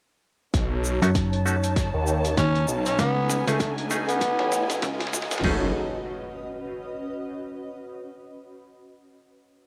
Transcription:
0.54 1.00 B1 medium
0.54 5.43 C#4 medium
0.54 5.40 D#4 medium
0.54 2.97 C#5 medium
0.54 2.97 A5 medium
0.54 kick loud
0.54 snare soft
0.54 closed hi-hat medium
0.54 riser medium
0.54 shaker soft
0.85 shaker medium
1.02 1.91 F#2 medium
1.02 1.10 A3 medium
1.02 1.10 C#4 medium
1.02 1.10 D#4 medium
1.02 1.10 F#4 medium
1.02 closed hi-hat medium
1.02 shaker medium
1.09 5.44 F#4 medium
1.15 5.44 B4 medium
1.15 kick loud
1.15 snare medium
1.15 closed hi-hat medium
1.15 shaker soft
1.33 closed hi-hat soft
1.46 1.56 A3 loud
1.46 1.56 C#4 medium
1.46 1.56 D#4 medium
1.46 1.56 F#4 loud
1.46 shaker medium
1.64 5.44 D#5 loud
1.64 closed hi-hat medium
1.64 shaker medium
1.76 kick loud
1.76 snare medium
1.76 closed hi-hat medium
1.76 shaker soft
1.94 2.36 D#2 loud
2.07 shaker medium
2.25 closed hi-hat medium
2.25 shaker medium
2.37 2.66 D#2 medium
2.37 2.66 C#4 medium
2.37 kick loud
2.37 snare medium
2.37 closed hi-hat medium
2.37 shaker soft
2.55 closed hi-hat soft
2.68 2.97 B1 loud
2.68 shaker medium
2.86 2.96 C#4 medium
2.86 closed hi-hat medium
2.86 shaker soft
2.99 3.44 C#2 loud
2.99 5.42 A3 medium
2.99 3.44 B3 medium
2.99 5.42 G#5 medium
2.99 kick loud
2.99 snare medium
2.99 closed hi-hat medium
2.99 shaker soft
3.30 snare medium
3.30 shaker medium
3.47 4.36 C#2 medium
3.47 3.56 A3 medium
3.47 3.59 A3 medium
3.47 3.59 C#4 medium
3.47 3.59 D#4 medium
3.47 3.59 G#4 medium
3.47 closed hi-hat medium
3.47 shaker medium
3.60 3.72 A3 medium
3.60 kick loud
3.60 snare medium
3.60 closed hi-hat medium
3.60 shaker soft
3.78 closed hi-hat soft
3.90 5.42 A3 medium
3.90 5.42 C#4 medium
3.90 5.42 D#4 medium
3.90 5.42 G#4 medium
3.90 snare medium
3.90 shaker medium
4.08 4.70 B3 loud
4.08 closed hi-hat medium
4.08 shaker soft
4.21 kick loud
4.21 snare loud
4.21 closed hi-hat medium
4.21 shaker soft
4.39 4.81 A1 loud
4.39 snare medium
4.52 snare medium
4.52 shaker medium
4.70 snare medium
4.70 closed hi-hat medium
4.70 shaker medium
4.82 5.28 C#2 loud
4.82 kick loud
4.82 snare loud
4.82 closed hi-hat medium
4.82 shaker soft
5.00 snare medium
5.00 closed hi-hat soft
5.07 snare medium
5.13 snare loud
5.13 shaker loud
5.22 snare loud
5.31 5.42 F#1 loud
5.31 snare loud
5.31 closed hi-hat medium
5.31 shaker medium
5.38 snare loud
5.44 5.72 F#1 loud
5.44 5.72 F#3 medium
5.44 5.68 A3 medium
5.44 5.68 C#4 medium
5.44 7.85 C#4 medium
5.44 5.72 D#4 medium
5.44 5.68 D#4 medium
5.44 5.73 G#4 medium
5.44 5.68 G#4 medium
5.44 5.72 A4 medium
5.44 snare loud
5.44 floor tom loud
5.44 crash medium
5.44 impact medium
5.55 7.85 F#4 medium
5.65 7.85 B4 medium
5.72 7.85 D#5 medium

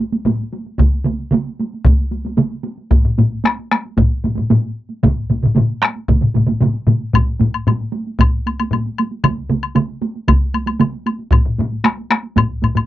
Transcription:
0.12 taiko high medium
0.26 taiko low-mid medium
0.26 taiko high medium
0.40 taiko high soft
0.53 taiko high medium
0.66 taiko high soft
0.78 taiko medium
0.78 taiko mid medium
0.78 taiko high medium
0.94 taiko high soft
1.04 taiko mid medium
1.04 taiko high medium
1.20 taiko high soft
1.31 taiko mid loud
1.31 taiko high medium
1.47 taiko high soft
1.59 taiko high medium
1.73 taiko high soft
1.85 taiko loud
1.85 taiko mid medium
1.85 taiko high medium
1.99 taiko high soft
2.11 taiko high soft
2.25 taiko high soft
2.37 taiko mid loud
2.37 taiko high medium
2.51 taiko high soft
2.64 taiko high medium
2.78 taiko high soft
2.91 taiko medium
2.91 taiko low-mid medium
2.91 taiko high medium
3.04 taiko low-mid medium
3.04 taiko high soft
3.18 taiko low-mid medium
3.18 taiko high medium
3.31 taiko high soft
3.44 taiko rim medium
3.44 taiko high medium
3.59 taiko high soft
3.71 taiko rim medium
3.71 taiko high soft
3.85 taiko high soft
3.97 taiko loud
3.97 taiko low-mid loud
3.97 taiko high medium
4.10 taiko high soft
4.24 taiko low-mid medium
4.24 taiko high soft
4.36 taiko low-mid medium
4.36 taiko high soft
4.50 taiko low-mid loud
4.50 taiko high medium
4.63 taiko high soft
4.90 taiko high soft
5.03 taiko medium
5.03 taiko low-mid loud
5.03 taiko mid loud
5.03 taiko high medium
5.30 taiko low-mid medium
5.30 taiko mid medium
5.30 taiko high medium
5.43 taiko low-mid medium
5.43 taiko mid medium
5.43 taiko high soft
5.55 taiko low-mid loud
5.55 taiko mid medium
5.55 taiko high medium
5.68 taiko high soft
5.82 taiko rim medium
5.82 taiko high soft
5.96 taiko high soft
6.08 taiko medium
6.08 taiko low-mid medium
6.08 taiko mid medium
6.08 taiko high medium
6.22 taiko low-mid medium
6.22 taiko mid medium
6.22 taiko high soft
6.35 taiko low-mid medium
6.35 taiko mid medium
6.35 taiko high soft
6.47 taiko low-mid medium
6.47 taiko mid medium
6.47 taiko high soft
6.60 taiko low-mid medium
6.60 taiko mid medium
6.60 taiko high medium
6.73 taiko high soft
6.87 taiko low-mid medium
6.87 taiko mid medium
6.87 taiko high medium
7.01 taiko high soft
7.14 taiko medium
7.14 taiko low-mid medium
7.14 taiko high medium
7.14 high woodblock medium
7.27 taiko high soft
7.40 taiko low-mid loud
7.40 taiko high medium
7.54 taiko high soft
7.54 high woodblock soft
7.67 taiko low-mid loud
7.67 taiko high medium
7.67 high woodblock soft
7.80 taiko high soft
7.93 taiko high medium
8.07 taiko high soft
8.19 taiko medium
8.19 taiko low-mid medium
8.19 taiko high medium
8.19 high woodblock medium
8.32 taiko high soft
8.47 taiko high soft
8.47 high woodblock soft
8.60 taiko high soft
8.60 high woodblock soft
8.71 taiko low-mid medium
8.71 taiko high medium
8.71 high woodblock soft
8.86 taiko high soft
8.98 taiko high medium
8.98 high woodblock soft
9.12 taiko high soft
9.24 taiko medium
9.24 taiko mid medium
9.24 taiko high medium
9.24 high woodblock medium
9.38 taiko high soft
9.50 taiko mid medium
9.50 taiko high medium
9.63 taiko high soft
9.63 high woodblock soft
9.75 taiko mid loud
9.75 taiko high medium
9.75 high woodblock soft
9.90 taiko high soft
10.02 taiko high medium
10.15 taiko high soft
10.28 taiko loud
10.28 taiko mid medium
10.28 taiko high medium
10.28 high woodblock medium
10.42 taiko high soft
10.54 taiko high soft
10.54 high woodblock soft
10.67 taiko high medium
10.67 high woodblock soft
10.80 taiko mid loud
10.80 taiko high medium
10.80 high woodblock soft
10.94 taiko high soft
11.06 taiko high medium
11.06 high woodblock soft
11.20 taiko high soft
11.32 taiko loud
11.32 taiko low-mid medium
11.32 taiko high medium
11.32 high woodblock soft
11.46 taiko low-mid medium
11.46 taiko high soft
11.58 taiko low-mid medium
11.58 taiko high medium
11.72 taiko high soft
11.84 taiko rim medium
11.84 taiko high medium
11.84 high woodblock soft
11.98 taiko high soft
12.10 taiko rim medium
12.10 taiko high medium
12.23 taiko high soft
12.36 taiko medium
12.36 taiko low-mid medium
12.36 taiko high medium
12.36 high woodblock medium
12.50 taiko high soft
12.62 taiko low-mid medium
12.62 taiko high soft
12.62 high woodblock soft
12.75 taiko low-mid medium
12.75 taiko high medium
12.75 high woodblock soft

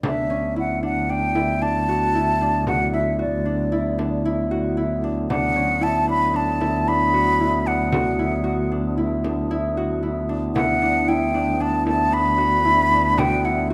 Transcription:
0.03 5.29 D2 medium
0.03 10.38 D3 medium
0.03 10.38 F#3 medium
0.03 13.74 B3 medium
0.03 0.36 D4 medium
0.03 0.55 E5 medium
0.03 frame drum medium
0.30 0.89 C#4 medium
0.56 1.35 E4 medium
0.56 0.83 F#5 medium
0.83 1.09 D4 medium
0.83 1.12 F#5 medium
1.09 1.61 D4 medium
1.09 1.64 G5 loud
1.35 2.14 E4 medium
1.35 frame drum soft
1.61 2.41 D4 medium
1.61 2.67 A5 loud
1.89 2.67 F#4 medium
2.15 2.93 E4 medium
2.41 3.45 D4 medium
2.67 3.19 F#4 medium
2.67 2.92 F#5 loud
2.67 frame drum medium
2.93 3.72 E4 medium
2.93 3.18 E5 medium
3.19 4.51 F#4 medium
3.19 4.21 D5 medium
3.45 3.98 D4 medium
3.72 4.25 E4 medium
3.98 5.03 D4 medium
3.98 frame drum soft
4.25 4.77 E4 medium
4.51 6.95 F#4 medium
4.77 5.80 E4 medium
5.04 5.30 D4 medium
5.29 10.56 D2 medium
5.29 5.62 D4 loud
5.29 5.85 F#5 loud
5.29 frame drum medium
5.56 6.14 C#4 medium
5.81 6.60 E4 medium
5.81 6.09 A5 loud
6.08 6.33 D4 medium
6.08 6.38 B5 loud
6.34 6.87 D4 medium
6.34 6.90 A5 loud
6.60 7.40 E4 medium
6.60 frame drum medium
6.87 7.66 D4 medium
6.87 7.68 B5 loud
7.14 7.92 F#4 medium
7.40 8.19 E4 medium
7.66 8.71 D4 medium
7.66 8.72 F#5 medium
7.92 8.43 F#4 loud
7.92 frame drum medium
8.19 8.97 E4 medium
8.19 frame drum soft
8.44 9.77 F#4 medium
8.71 9.24 D4 medium
8.97 9.50 E4 medium
9.24 10.29 D4 medium
9.24 frame drum medium
9.50 10.02 E4 medium
9.50 frame drum soft
9.77 12.21 F#4 medium
10.03 10.55 E4 medium
10.29 10.82 D4 medium
10.55 13.74 D2 medium
10.55 13.74 G3 medium
10.55 13.74 D4 medium
10.55 11.08 E4 medium
10.55 11.10 F#5 loud
10.55 frame drum medium
10.82 11.34 D4 medium
11.08 11.85 E4 medium
11.08 11.63 G5 medium
11.34 11.60 D4 medium
11.60 12.12 D4 medium
11.60 11.87 A5 loud
11.86 12.65 E4 medium
11.86 12.15 A5 loud
11.86 frame drum medium
12.12 12.91 D4 medium
12.12 13.20 B5 loud
12.38 13.17 F#4 medium
12.65 13.44 E4 medium
12.91 13.74 D4 medium
13.18 13.70 F#4 loud
13.18 13.47 G5 loud
13.18 frame drum medium
13.45 13.74 E4 medium
13.45 13.71 F#5 medium
13.70 13.74 F#4 medium

